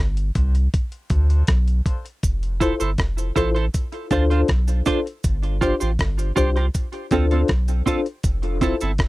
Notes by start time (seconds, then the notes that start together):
0.00 G1
0.17 closed hi-hat
0.35 C2 D4 F4 G4 C5, kick, closed hi-hat
0.55 closed hi-hat
0.74 kick, closed hi-hat
0.92 closed hi-hat
1.10 D2 D4 F4 A4 C5, kick, closed hi-hat
1.29 D4 F4 A4 C5, closed hi-hat
1.47 B1, kick, cross-stick, closed hi-hat
1.68 closed hi-hat
1.86 D4 F4 A4 C5, kick, closed hi-hat
2.06 closed hi-hat
2.23 F1, kick, closed hi-hat, cabasa
2.43 closed hi-hat
2.60 E4 F4 A4 C5, kick, closed hi-hat, cabasa
2.80 G1 E4 A4 C5, closed hi-hat, cabasa
2.98 F1, kick, cross-stick, closed hi-hat
3.18 closed hi-hat, cabasa
3.36 A1 E4 F4 A4 C5, kick, closed hi-hat, cabasa
3.55 E4 A4 C5, closed hi-hat
3.74 kick, closed hi-hat, cabasa
3.92 closed hi-hat
4.11 D2 D4 F4 A4 C5, kick, closed hi-hat, cabasa
4.30 D4 F4 A4 C5, closed hi-hat
4.48 B1, kick, cross-stick, closed hi-hat
4.68 closed hi-hat, cabasa
4.86 D4 F4 A4 C5, kick, closed hi-hat, cabasa
5.07 closed hi-hat
5.24 G1, kick, closed hi-hat, cabasa
5.43 closed hi-hat
5.61 D4 F4 G4 C5, kick, closed hi-hat, cabasa
5.80 A1 F4 G4 C5, closed hi-hat, cabasa
5.99 G1, kick, cross-stick, closed hi-hat
6.19 closed hi-hat, cabasa
6.36 C2 D4 F4 G4 C5, kick, closed hi-hat, cabasa
6.56 F4 G4 C5, closed hi-hat
6.74 kick, closed hi-hat, cabasa
6.93 closed hi-hat
7.11 D2 C4 D4 F4 A4 C5, kick, closed hi-hat, cabasa
7.31 C4 D4 F4 A4 C5, closed hi-hat
7.48 B1, kick, cross-stick, closed hi-hat
7.68 closed hi-hat, cabasa
7.86 C4 D4 F4 A4 C5, kick, closed hi-hat, cabasa
8.06 closed hi-hat
8.23 F1, kick, closed hi-hat, cabasa
8.43 closed hi-hat
8.61 C4 E4 F4 A4 C5, kick, closed hi-hat, cabasa
8.81 G1 C4 E4 A4, closed hi-hat, cabasa
8.98 F1, kick, cross-stick, closed hi-hat